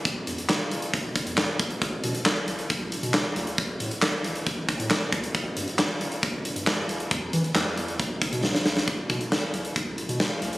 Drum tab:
HH |x-xx--xxx-xx--xx|x-xx--xxx-xx--xx|x-xx--xxx-xx--xx|x-xx--xxx-xx--xx|
CP |----x-------x---|----x-------x---|----x-------x---|----x-------x---|
SD |----o-------o---|----o-------o---|----o-------o---|----o-------o---|
BD |o-------o-o---o-|o-------o-------|o-------o-o---o-|o-------o-------|

HH |x-xx--xxx-xx----|x-xx--xxx-xx--xx|
CP |----x-----------|----------------|
SD |----o-------oooo|----o-------o---|
BD |o-------o-o-----|o-o-----o-------|